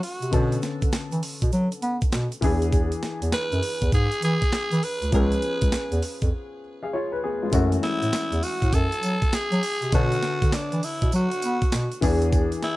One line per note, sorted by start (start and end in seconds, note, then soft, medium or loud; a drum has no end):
0.00 0.28 E3 medium
0.00 0.29 A3 medium
0.00 0.29 C#4 medium
0.00 0.29 F#4 medium
0.00 0.59 F#4 medium
0.00 open hi-hat medium
0.00 shaker soft
0.22 0.31 C3 medium
0.22 closed hi-hat medium
0.22 shaker medium
0.31 0.57 B2 loud
0.31 2.38 D3 medium
0.31 2.38 B3 medium
0.31 2.39 C#4 medium
0.31 2.39 A4 medium
0.31 kick loud
0.31 closed hi-hat medium
0.31 shaker medium
0.52 closed hi-hat medium
0.52 shaker medium
0.62 snare medium
0.62 closed hi-hat medium
0.62 shaker soft
0.82 0.91 D3 medium
0.82 kick loud
0.82 closed hi-hat medium
0.82 shaker medium
0.92 snare loud
0.92 clap medium
0.92 closed hi-hat medium
0.92 shaker medium
1.11 1.21 E3 medium
1.11 closed hi-hat soft
1.11 shaker medium
1.23 open hi-hat medium
1.23 shaker soft
1.42 1.51 B2 medium
1.42 kick medium
1.42 closed hi-hat medium
1.42 shaker medium
1.52 1.69 F#3 loud
1.52 closed hi-hat medium
1.52 shaker medium
1.72 closed hi-hat medium
1.72 shaker soft
1.82 1.98 B3 medium
1.82 closed hi-hat medium
2.01 kick medium
2.01 closed hi-hat medium
2.01 shaker soft
2.12 2.29 B2 loud
2.12 snare loud
2.12 clap medium
2.12 closed hi-hat medium
2.12 shaker medium
2.32 closed hi-hat soft
2.32 shaker medium
2.41 2.92 E2 loud
2.41 4.78 E3 medium
2.41 4.78 B3 medium
2.41 4.79 D4 medium
2.41 4.79 G#4 medium
2.41 kick loud
2.41 open hi-hat medium
2.41 shaker soft
2.62 closed hi-hat medium
2.62 shaker medium
2.73 kick loud
2.73 closed hi-hat medium
2.73 shaker medium
2.92 closed hi-hat medium
2.92 shaker medium
3.03 snare medium
3.03 closed hi-hat medium
3.03 shaker medium
3.22 3.31 E2 medium
3.22 closed hi-hat medium
3.22 shaker medium
3.32 3.89 B4 loud
3.32 snare loud
3.32 clap medium
3.32 closed hi-hat medium
3.32 shaker medium
3.52 3.61 F#2 medium
3.52 closed hi-hat soft
3.52 shaker soft
3.63 open hi-hat medium
3.63 shaker soft
3.82 3.91 E2 medium
3.82 kick medium
3.82 closed hi-hat medium
3.82 shaker medium
3.92 4.08 G#2 loud
3.92 4.21 G#4 loud
3.92 kick loud
3.92 closed hi-hat medium
3.92 shaker medium
4.12 closed hi-hat medium
4.12 shaker soft
4.22 4.38 E3 loud
4.22 4.85 G#4 loud
4.22 closed hi-hat medium
4.42 kick medium
4.42 closed hi-hat medium
4.42 shaker soft
4.52 snare loud
4.52 clap medium
4.52 closed hi-hat medium
4.52 shaker medium
4.71 4.81 E3 loud
4.71 closed hi-hat soft
4.71 shaker medium
4.83 5.13 B4 loud
4.83 open hi-hat medium
4.83 shaker soft
5.02 5.11 D2 medium
5.02 closed hi-hat medium
5.02 shaker medium
5.11 5.37 C#2 loud
5.11 7.48 F3 medium
5.11 6.59 B3 medium
5.11 6.60 C#4 medium
5.11 6.60 G#4 medium
5.11 6.29 B4 loud
5.11 kick loud
5.11 closed hi-hat medium
5.11 shaker medium
5.32 closed hi-hat soft
5.32 shaker soft
5.42 closed hi-hat medium
5.61 5.71 C#2 medium
5.61 kick loud
5.61 closed hi-hat medium
5.61 shaker medium
5.72 snare loud
5.72 clap medium
5.72 closed hi-hat medium
5.72 shaker medium
5.92 6.01 E2 loud
5.92 closed hi-hat soft
5.92 shaker soft
6.03 open hi-hat medium
6.03 shaker soft
6.22 6.31 F2 medium
6.22 kick medium
6.22 closed hi-hat soft
6.22 shaker medium
6.83 6.93 G#4 medium
6.83 6.92 F5 medium
6.93 7.12 F4 medium
6.93 7.11 C#5 medium
7.12 7.22 B4 medium
7.24 7.42 B3 medium
7.24 7.42 G#4 medium
7.42 7.71 G#3 medium
7.42 7.71 F4 medium
7.51 7.77 F#2 loud
7.51 9.88 E3 medium
7.51 9.89 A3 medium
7.51 9.89 C#4 medium
7.51 9.89 F#4 medium
7.51 kick loud
7.51 closed hi-hat medium
7.51 tambourine medium
7.51 shaker medium
7.72 closed hi-hat medium
7.72 shaker medium
7.83 8.45 E4 loud
7.83 snare medium
7.83 closed hi-hat medium
8.02 8.11 A2 medium
8.02 closed hi-hat medium
8.02 shaker medium
8.13 snare loud
8.13 clap medium
8.13 closed hi-hat medium
8.13 tambourine medium
8.13 shaker medium
8.32 8.41 E2 medium
8.32 closed hi-hat medium
8.32 shaker medium
8.43 8.76 F#4 loud
8.43 open hi-hat medium
8.43 tambourine medium
8.43 shaker soft
8.62 8.71 A2 medium
8.62 kick medium
8.62 closed hi-hat medium
8.62 shaker medium
8.73 8.88 F#2 loud
8.73 9.36 A4 loud
8.73 kick loud
8.73 closed hi-hat medium
8.73 tambourine medium
8.73 shaker medium
8.92 closed hi-hat medium
8.92 shaker soft
9.03 9.19 F#3 medium
9.03 closed hi-hat medium
9.03 tambourine medium
9.22 kick medium
9.22 closed hi-hat soft
9.22 shaker soft
9.33 9.93 G#4 loud
9.33 snare loud
9.33 clap medium
9.33 closed hi-hat medium
9.33 tambourine medium
9.33 shaker medium
9.52 9.61 F#3 loud
9.52 closed hi-hat soft
9.52 shaker medium
9.63 open hi-hat medium
9.63 tambourine medium
9.63 shaker soft
9.82 9.91 C3 medium
9.82 closed hi-hat medium
9.82 shaker medium
9.92 10.17 B2 loud
9.92 11.98 D3 medium
9.92 11.99 B3 medium
9.92 10.55 F#4 loud
9.92 12.00 A4 medium
9.92 11.99 C#5 medium
9.92 kick loud
9.92 closed hi-hat medium
9.92 tambourine medium
9.92 shaker medium
10.12 closed hi-hat medium
10.12 shaker medium
10.23 snare medium
10.23 closed hi-hat medium
10.42 10.51 D3 medium
10.42 kick loud
10.42 closed hi-hat medium
10.42 shaker medium
10.52 10.86 D4 medium
10.52 snare loud
10.52 clap medium
10.52 closed hi-hat medium
10.52 tambourine medium
10.52 shaker medium
10.72 10.81 E3 medium
10.72 closed hi-hat medium
10.72 shaker soft
10.83 11.14 E4 medium
10.83 open hi-hat medium
10.83 tambourine medium
10.83 shaker soft
11.02 11.11 B2 medium
11.02 kick medium
11.02 closed hi-hat soft
11.02 shaker medium
11.12 11.29 F#3 loud
11.12 12.00 F#4 loud
11.12 closed hi-hat medium
11.12 tambourine medium
11.12 shaker medium
11.31 closed hi-hat medium
11.31 shaker soft
11.42 11.59 B3 medium
11.42 closed hi-hat medium
11.42 tambourine medium
11.62 kick medium
11.62 closed hi-hat soft
11.62 shaker soft
11.72 11.89 B2 loud
11.72 snare loud
11.72 clap loud
11.72 closed hi-hat medium
11.72 tambourine loud
11.72 shaker medium
11.92 closed hi-hat soft
11.92 shaker medium
12.01 12.52 E2 loud
12.01 12.77 E3 medium
12.01 12.77 B3 medium
12.01 12.77 D4 medium
12.01 12.77 G#4 medium
12.01 kick loud
12.01 open hi-hat medium
12.01 tambourine medium
12.01 shaker soft
12.22 closed hi-hat medium
12.22 shaker medium
12.32 kick loud
12.32 closed hi-hat medium
12.32 tambourine medium
12.32 shaker medium
12.52 closed hi-hat medium
12.52 shaker soft
12.63 12.77 E4 loud
12.63 snare medium
12.63 closed hi-hat medium